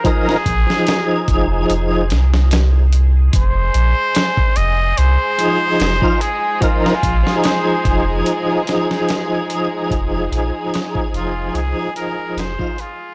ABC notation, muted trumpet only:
X:1
M:4/4
L:1/8
Q:"Swing 16ths" 1/4=73
K:Fm
V:1 name="Muted trumpet"
A4 z4 | c3 e c3 A | F2 c2 z4 | z3 F A B c F |]